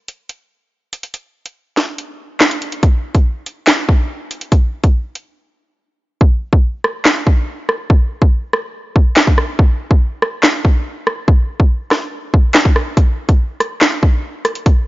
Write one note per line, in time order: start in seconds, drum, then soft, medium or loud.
0.08 closed hi-hat medium
0.29 closed hi-hat medium
0.93 closed hi-hat medium
1.03 closed hi-hat medium
1.14 closed hi-hat medium
1.46 closed hi-hat medium
1.77 snare medium
1.77 closed hi-hat medium
1.98 closed hi-hat medium
2.40 snare loud
2.40 clap loud
2.51 closed hi-hat medium
2.62 closed hi-hat medium
2.72 closed hi-hat medium
2.83 kick loud
2.83 closed hi-hat medium
3.15 kick medium
3.15 closed hi-hat medium
3.46 closed hi-hat medium
3.67 snare loud
3.67 clap loud
3.67 closed hi-hat medium
3.89 kick medium
4.31 closed hi-hat medium
4.41 closed hi-hat medium
4.52 kick loud
4.52 closed hi-hat medium
4.84 kick medium
4.84 closed hi-hat medium
5.15 closed hi-hat medium
6.21 kick loud
6.53 kick medium
6.84 cross-stick medium
7.05 snare loud
7.05 clap loud
7.27 kick medium
7.69 cross-stick medium
7.90 kick loud
8.22 kick medium
8.53 cross-stick medium
8.96 kick medium
9.16 snare loud
9.16 clap loud
9.27 kick loud
9.38 cross-stick medium
9.59 kick loud
9.91 kick loud
10.22 cross-stick medium
10.43 snare loud
10.43 clap loud
10.65 kick medium
11.07 cross-stick medium
11.28 kick loud
11.60 kick medium
11.91 cross-stick medium
11.91 snare medium
12.34 kick loud
12.54 snare loud
12.54 clap loud
12.65 kick loud
12.76 cross-stick medium
12.97 kick loud
12.97 closed hi-hat medium
13.29 kick medium
13.29 closed hi-hat medium
13.60 cross-stick medium
13.60 closed hi-hat medium
13.81 snare loud
13.81 clap loud
13.81 closed hi-hat medium
14.03 kick medium
14.45 cross-stick medium
14.45 closed hi-hat medium
14.55 closed hi-hat medium
14.66 kick loud
14.66 closed hi-hat medium